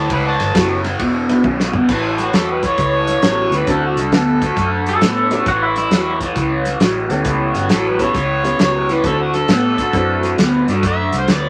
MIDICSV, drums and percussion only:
0, 0, Header, 1, 2, 480
1, 0, Start_track
1, 0, Tempo, 446761
1, 114, Time_signature, 4, 2, 24, 8
1, 12347, End_track
2, 0, Start_track
2, 0, Title_t, "Drums"
2, 106, Note_on_c, 9, 51, 78
2, 109, Note_on_c, 9, 36, 90
2, 214, Note_off_c, 9, 51, 0
2, 216, Note_off_c, 9, 36, 0
2, 427, Note_on_c, 9, 51, 67
2, 434, Note_on_c, 9, 38, 37
2, 534, Note_off_c, 9, 51, 0
2, 541, Note_off_c, 9, 38, 0
2, 590, Note_on_c, 9, 51, 85
2, 591, Note_on_c, 9, 36, 88
2, 598, Note_on_c, 9, 38, 112
2, 698, Note_off_c, 9, 36, 0
2, 698, Note_off_c, 9, 51, 0
2, 705, Note_off_c, 9, 38, 0
2, 906, Note_on_c, 9, 51, 67
2, 913, Note_on_c, 9, 38, 36
2, 1013, Note_off_c, 9, 51, 0
2, 1020, Note_off_c, 9, 38, 0
2, 1068, Note_on_c, 9, 51, 77
2, 1070, Note_on_c, 9, 36, 75
2, 1175, Note_off_c, 9, 51, 0
2, 1177, Note_off_c, 9, 36, 0
2, 1389, Note_on_c, 9, 51, 61
2, 1396, Note_on_c, 9, 38, 35
2, 1496, Note_off_c, 9, 51, 0
2, 1504, Note_off_c, 9, 38, 0
2, 1549, Note_on_c, 9, 36, 90
2, 1549, Note_on_c, 9, 48, 68
2, 1656, Note_off_c, 9, 36, 0
2, 1657, Note_off_c, 9, 48, 0
2, 1718, Note_on_c, 9, 38, 73
2, 1826, Note_off_c, 9, 38, 0
2, 1864, Note_on_c, 9, 43, 103
2, 1972, Note_off_c, 9, 43, 0
2, 2027, Note_on_c, 9, 49, 92
2, 2028, Note_on_c, 9, 36, 96
2, 2035, Note_on_c, 9, 38, 32
2, 2135, Note_off_c, 9, 36, 0
2, 2135, Note_off_c, 9, 49, 0
2, 2142, Note_off_c, 9, 38, 0
2, 2344, Note_on_c, 9, 42, 59
2, 2351, Note_on_c, 9, 38, 32
2, 2451, Note_off_c, 9, 42, 0
2, 2459, Note_off_c, 9, 38, 0
2, 2507, Note_on_c, 9, 42, 81
2, 2514, Note_on_c, 9, 38, 104
2, 2614, Note_off_c, 9, 42, 0
2, 2622, Note_off_c, 9, 38, 0
2, 2822, Note_on_c, 9, 42, 63
2, 2824, Note_on_c, 9, 36, 78
2, 2830, Note_on_c, 9, 38, 36
2, 2929, Note_off_c, 9, 42, 0
2, 2932, Note_off_c, 9, 36, 0
2, 2937, Note_off_c, 9, 38, 0
2, 2984, Note_on_c, 9, 42, 75
2, 2986, Note_on_c, 9, 36, 100
2, 2991, Note_on_c, 9, 38, 33
2, 3091, Note_off_c, 9, 42, 0
2, 3094, Note_off_c, 9, 36, 0
2, 3099, Note_off_c, 9, 38, 0
2, 3302, Note_on_c, 9, 42, 66
2, 3309, Note_on_c, 9, 38, 33
2, 3409, Note_off_c, 9, 42, 0
2, 3417, Note_off_c, 9, 38, 0
2, 3462, Note_on_c, 9, 42, 89
2, 3469, Note_on_c, 9, 38, 105
2, 3569, Note_off_c, 9, 42, 0
2, 3577, Note_off_c, 9, 38, 0
2, 3782, Note_on_c, 9, 42, 61
2, 3790, Note_on_c, 9, 38, 34
2, 3890, Note_off_c, 9, 42, 0
2, 3897, Note_off_c, 9, 38, 0
2, 3944, Note_on_c, 9, 42, 83
2, 3948, Note_on_c, 9, 36, 100
2, 3952, Note_on_c, 9, 38, 32
2, 4052, Note_off_c, 9, 42, 0
2, 4055, Note_off_c, 9, 36, 0
2, 4059, Note_off_c, 9, 38, 0
2, 4267, Note_on_c, 9, 42, 60
2, 4274, Note_on_c, 9, 38, 34
2, 4374, Note_off_c, 9, 42, 0
2, 4382, Note_off_c, 9, 38, 0
2, 4427, Note_on_c, 9, 42, 74
2, 4434, Note_on_c, 9, 38, 109
2, 4534, Note_off_c, 9, 42, 0
2, 4542, Note_off_c, 9, 38, 0
2, 4746, Note_on_c, 9, 36, 78
2, 4747, Note_on_c, 9, 42, 59
2, 4755, Note_on_c, 9, 38, 32
2, 4853, Note_off_c, 9, 36, 0
2, 4855, Note_off_c, 9, 42, 0
2, 4862, Note_off_c, 9, 38, 0
2, 4905, Note_on_c, 9, 42, 72
2, 4908, Note_on_c, 9, 36, 90
2, 4912, Note_on_c, 9, 38, 31
2, 5012, Note_off_c, 9, 42, 0
2, 5015, Note_off_c, 9, 36, 0
2, 5020, Note_off_c, 9, 38, 0
2, 5225, Note_on_c, 9, 42, 56
2, 5232, Note_on_c, 9, 38, 34
2, 5332, Note_off_c, 9, 42, 0
2, 5340, Note_off_c, 9, 38, 0
2, 5384, Note_on_c, 9, 42, 76
2, 5392, Note_on_c, 9, 38, 108
2, 5492, Note_off_c, 9, 42, 0
2, 5499, Note_off_c, 9, 38, 0
2, 5702, Note_on_c, 9, 42, 58
2, 5709, Note_on_c, 9, 38, 34
2, 5809, Note_off_c, 9, 42, 0
2, 5817, Note_off_c, 9, 38, 0
2, 5867, Note_on_c, 9, 42, 80
2, 5869, Note_on_c, 9, 36, 107
2, 5874, Note_on_c, 9, 38, 32
2, 5974, Note_off_c, 9, 42, 0
2, 5977, Note_off_c, 9, 36, 0
2, 5982, Note_off_c, 9, 38, 0
2, 6186, Note_on_c, 9, 42, 65
2, 6193, Note_on_c, 9, 38, 32
2, 6293, Note_off_c, 9, 42, 0
2, 6301, Note_off_c, 9, 38, 0
2, 6349, Note_on_c, 9, 42, 80
2, 6356, Note_on_c, 9, 38, 99
2, 6456, Note_off_c, 9, 42, 0
2, 6464, Note_off_c, 9, 38, 0
2, 6667, Note_on_c, 9, 36, 74
2, 6667, Note_on_c, 9, 42, 68
2, 6675, Note_on_c, 9, 38, 32
2, 6774, Note_off_c, 9, 36, 0
2, 6775, Note_off_c, 9, 42, 0
2, 6782, Note_off_c, 9, 38, 0
2, 6830, Note_on_c, 9, 36, 99
2, 6830, Note_on_c, 9, 42, 72
2, 6837, Note_on_c, 9, 38, 31
2, 6937, Note_off_c, 9, 36, 0
2, 6937, Note_off_c, 9, 42, 0
2, 6944, Note_off_c, 9, 38, 0
2, 7147, Note_on_c, 9, 42, 65
2, 7154, Note_on_c, 9, 38, 35
2, 7254, Note_off_c, 9, 42, 0
2, 7262, Note_off_c, 9, 38, 0
2, 7307, Note_on_c, 9, 42, 84
2, 7315, Note_on_c, 9, 38, 116
2, 7415, Note_off_c, 9, 42, 0
2, 7422, Note_off_c, 9, 38, 0
2, 7627, Note_on_c, 9, 42, 61
2, 7635, Note_on_c, 9, 38, 33
2, 7735, Note_off_c, 9, 42, 0
2, 7742, Note_off_c, 9, 38, 0
2, 7785, Note_on_c, 9, 42, 78
2, 7790, Note_on_c, 9, 36, 109
2, 7792, Note_on_c, 9, 38, 35
2, 7892, Note_off_c, 9, 42, 0
2, 7897, Note_off_c, 9, 36, 0
2, 7900, Note_off_c, 9, 38, 0
2, 8106, Note_on_c, 9, 42, 61
2, 8114, Note_on_c, 9, 38, 33
2, 8214, Note_off_c, 9, 42, 0
2, 8221, Note_off_c, 9, 38, 0
2, 8265, Note_on_c, 9, 42, 80
2, 8272, Note_on_c, 9, 38, 101
2, 8372, Note_off_c, 9, 42, 0
2, 8380, Note_off_c, 9, 38, 0
2, 8587, Note_on_c, 9, 36, 78
2, 8588, Note_on_c, 9, 42, 61
2, 8595, Note_on_c, 9, 38, 34
2, 8694, Note_off_c, 9, 36, 0
2, 8695, Note_off_c, 9, 42, 0
2, 8703, Note_off_c, 9, 38, 0
2, 8749, Note_on_c, 9, 42, 66
2, 8752, Note_on_c, 9, 36, 99
2, 8756, Note_on_c, 9, 38, 29
2, 8856, Note_off_c, 9, 42, 0
2, 8859, Note_off_c, 9, 36, 0
2, 8864, Note_off_c, 9, 38, 0
2, 9071, Note_on_c, 9, 42, 52
2, 9079, Note_on_c, 9, 38, 32
2, 9179, Note_off_c, 9, 42, 0
2, 9186, Note_off_c, 9, 38, 0
2, 9230, Note_on_c, 9, 42, 78
2, 9238, Note_on_c, 9, 38, 114
2, 9338, Note_off_c, 9, 42, 0
2, 9345, Note_off_c, 9, 38, 0
2, 9552, Note_on_c, 9, 42, 59
2, 9559, Note_on_c, 9, 38, 33
2, 9659, Note_off_c, 9, 42, 0
2, 9667, Note_off_c, 9, 38, 0
2, 9710, Note_on_c, 9, 42, 76
2, 9711, Note_on_c, 9, 36, 110
2, 9718, Note_on_c, 9, 38, 32
2, 9818, Note_off_c, 9, 42, 0
2, 9819, Note_off_c, 9, 36, 0
2, 9825, Note_off_c, 9, 38, 0
2, 10030, Note_on_c, 9, 42, 59
2, 10037, Note_on_c, 9, 38, 33
2, 10137, Note_off_c, 9, 42, 0
2, 10145, Note_off_c, 9, 38, 0
2, 10187, Note_on_c, 9, 42, 81
2, 10194, Note_on_c, 9, 38, 107
2, 10294, Note_off_c, 9, 42, 0
2, 10302, Note_off_c, 9, 38, 0
2, 10509, Note_on_c, 9, 36, 77
2, 10510, Note_on_c, 9, 42, 57
2, 10517, Note_on_c, 9, 38, 34
2, 10617, Note_off_c, 9, 36, 0
2, 10617, Note_off_c, 9, 42, 0
2, 10625, Note_off_c, 9, 38, 0
2, 10669, Note_on_c, 9, 42, 70
2, 10672, Note_on_c, 9, 36, 105
2, 10677, Note_on_c, 9, 38, 30
2, 10776, Note_off_c, 9, 42, 0
2, 10780, Note_off_c, 9, 36, 0
2, 10784, Note_off_c, 9, 38, 0
2, 10992, Note_on_c, 9, 42, 57
2, 10999, Note_on_c, 9, 38, 35
2, 11099, Note_off_c, 9, 42, 0
2, 11107, Note_off_c, 9, 38, 0
2, 11155, Note_on_c, 9, 42, 89
2, 11162, Note_on_c, 9, 38, 108
2, 11262, Note_off_c, 9, 42, 0
2, 11270, Note_off_c, 9, 38, 0
2, 11475, Note_on_c, 9, 42, 60
2, 11483, Note_on_c, 9, 38, 35
2, 11583, Note_off_c, 9, 42, 0
2, 11590, Note_off_c, 9, 38, 0
2, 11635, Note_on_c, 9, 42, 83
2, 11637, Note_on_c, 9, 36, 101
2, 11642, Note_on_c, 9, 38, 30
2, 11742, Note_off_c, 9, 42, 0
2, 11744, Note_off_c, 9, 36, 0
2, 11750, Note_off_c, 9, 38, 0
2, 11952, Note_on_c, 9, 42, 63
2, 11960, Note_on_c, 9, 38, 35
2, 12060, Note_off_c, 9, 42, 0
2, 12067, Note_off_c, 9, 38, 0
2, 12116, Note_on_c, 9, 42, 81
2, 12123, Note_on_c, 9, 38, 97
2, 12223, Note_off_c, 9, 42, 0
2, 12231, Note_off_c, 9, 38, 0
2, 12347, End_track
0, 0, End_of_file